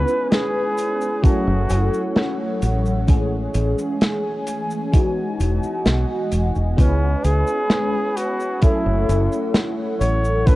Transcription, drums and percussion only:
0.08 cabasa
0.32 snare, closed hi-hat, cabasa
0.78 closed hi-hat, cabasa
1.01 cabasa
1.24 kick, closed hi-hat, cabasa
1.70 closed hi-hat, cabasa
1.94 cabasa
2.16 snare, closed hi-hat, cabasa
2.62 closed hi-hat, cabasa
2.86 cabasa
3.08 kick, closed hi-hat, cabasa
3.54 closed hi-hat, cabasa
3.78 cabasa
4.01 snare, closed hi-hat, cabasa
4.47 closed hi-hat, cabasa
4.70 cabasa
4.93 kick, closed hi-hat, cabasa
5.40 closed hi-hat, cabasa
5.63 cabasa
5.86 snare, closed hi-hat, cabasa
6.32 closed hi-hat, cabasa
6.55 cabasa
6.78 kick, closed hi-hat, cabasa
7.24 closed hi-hat, cabasa
7.47 cabasa
7.70 snare, closed hi-hat, cabasa
8.17 closed hi-hat, cabasa
8.40 cabasa
8.62 kick, closed hi-hat, cabasa
9.09 closed hi-hat, cabasa
9.32 cabasa
9.54 snare, closed hi-hat, cabasa
10.01 closed hi-hat, cabasa
10.25 cabasa
10.47 kick, closed hi-hat, cabasa

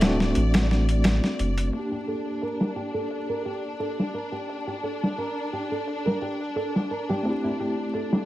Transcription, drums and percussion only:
0.01 snare, closed hi-hat
0.20 snare
0.35 closed hi-hat
0.54 snare, closed hi-hat
0.71 snare
0.89 closed hi-hat
1.04 snare, closed hi-hat
1.24 snare
1.39 closed hi-hat
1.58 closed hi-hat
1.73 closed hi-hat
2.07 closed hi-hat
2.26 closed hi-hat
2.42 closed hi-hat
2.61 snare
2.76 closed hi-hat
3.11 closed hi-hat
3.45 closed hi-hat
3.80 closed hi-hat
3.99 snare
4.15 closed hi-hat
4.49 closed hi-hat
4.68 closed hi-hat
4.84 closed hi-hat
5.03 snare
5.19 closed hi-hat
5.54 closed hi-hat
5.87 closed hi-hat
6.07 snare
6.22 closed hi-hat
6.41 closed hi-hat
6.57 closed hi-hat
6.76 snare
6.91 closed hi-hat
7.10 snare
7.25 closed hi-hat
7.60 closed hi-hat
7.78 closed hi-hat
7.94 closed hi-hat
8.13 snare

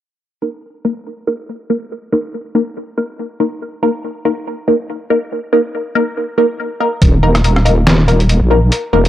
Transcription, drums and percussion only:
7.02 kick, closed hi-hat
7.35 cross-stick, closed hi-hat
7.44 closed hi-hat
7.56 cross-stick
7.66 closed hi-hat
7.87 snare, closed hi-hat
8.08 closed hi-hat
8.20 closed hi-hat
8.29 closed hi-hat
8.72 closed hi-hat
9.05 closed hi-hat

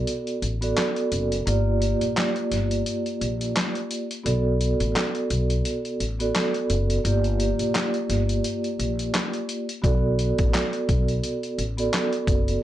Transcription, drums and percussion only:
0.07 closed hi-hat
0.27 closed hi-hat
0.42 closed hi-hat
0.62 closed hi-hat
0.77 snare, clap, closed hi-hat
0.96 closed hi-hat
1.12 closed hi-hat
1.32 closed hi-hat
1.47 closed hi-hat
1.82 closed hi-hat
2.01 closed hi-hat
2.17 snare, clap, closed hi-hat
2.36 closed hi-hat
2.52 snare, closed hi-hat
2.71 closed hi-hat
2.86 closed hi-hat
3.06 closed hi-hat
3.21 closed hi-hat
3.41 closed hi-hat
3.56 snare, clap, closed hi-hat
3.75 closed hi-hat
3.91 closed hi-hat
4.11 closed hi-hat
4.26 closed hi-hat
4.61 closed hi-hat
4.80 closed hi-hat
4.96 snare, clap, closed hi-hat
5.15 closed hi-hat
5.30 closed hi-hat
5.50 closed hi-hat
5.65 closed hi-hat
5.85 closed hi-hat
6.00 closed hi-hat
6.20 closed hi-hat
6.35 snare, clap, closed hi-hat
6.54 closed hi-hat
6.70 closed hi-hat
6.90 closed hi-hat
7.05 closed hi-hat
7.24 closed hi-hat
7.40 closed hi-hat
7.59 closed hi-hat
7.75 snare, clap, closed hi-hat
7.94 closed hi-hat
8.10 snare, closed hi-hat
8.29 closed hi-hat
8.44 closed hi-hat
8.64 closed hi-hat
8.80 closed hi-hat
8.99 closed hi-hat
9.14 snare, clap, closed hi-hat
9.33 closed hi-hat
9.49 closed hi-hat
9.69 closed hi-hat
9.84 kick, closed hi-hat
10.19 closed hi-hat
10.38 kick, closed hi-hat
10.54 snare, clap, closed hi-hat
10.73 closed hi-hat
10.89 kick, closed hi-hat
11.08 closed hi-hat
11.23 closed hi-hat
11.43 closed hi-hat
11.59 closed hi-hat
11.78 closed hi-hat
11.93 snare, clap, closed hi-hat
12.13 closed hi-hat
12.27 kick, closed hi-hat
12.48 closed hi-hat

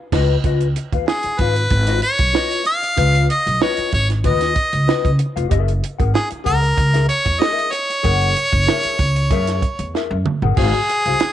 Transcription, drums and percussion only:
0.12 kick, snare, crash
0.44 kick, closed hi-hat
0.61 closed hi-hat
0.76 closed hi-hat
0.93 kick, closed hi-hat
1.08 snare
1.23 closed hi-hat
1.39 kick, closed hi-hat
1.56 closed hi-hat
1.70 kick, closed hi-hat
1.87 snare, closed hi-hat
2.02 closed hi-hat
2.19 kick, closed hi-hat
2.35 snare
2.51 closed hi-hat
2.65 closed hi-hat
2.83 closed hi-hat
2.98 kick, closed hi-hat
3.15 closed hi-hat
3.30 closed hi-hat
3.47 closed hi-hat
3.62 snare
3.77 closed hi-hat
3.93 kick, closed hi-hat
4.10 snare, closed hi-hat
4.24 kick, closed hi-hat
4.41 snare, closed hi-hat
4.56 kick, closed hi-hat
4.73 closed hi-hat
4.89 snare
5.05 kick, closed hi-hat
5.19 closed hi-hat
5.37 closed hi-hat
5.51 kick, closed hi-hat
5.68 closed hi-hat
5.84 closed hi-hat
6.00 kick, closed hi-hat
6.15 snare
6.31 closed hi-hat
6.46 kick, closed hi-hat
6.64 closed hi-hat
6.78 kick, closed hi-hat
6.94 snare, closed hi-hat
7.09 closed hi-hat
7.26 kick, closed hi-hat
7.42 snare
7.59 closed hi-hat
7.73 closed hi-hat
7.90 closed hi-hat
8.04 kick, closed hi-hat
8.21 closed hi-hat
8.37 closed hi-hat
8.53 kick, closed hi-hat
8.69 snare
8.83 closed hi-hat
8.99 kick, closed hi-hat
9.16 closed hi-hat
9.31 kick, closed hi-hat
9.47 snare, closed hi-hat
9.62 kick, closed hi-hat
9.79 closed hi-hat
9.95 snare
10.26 mid tom
10.42 floor tom
10.57 kick, crash
10.74 closed hi-hat
10.90 closed hi-hat
11.06 closed hi-hat
11.20 snare, closed hi-hat

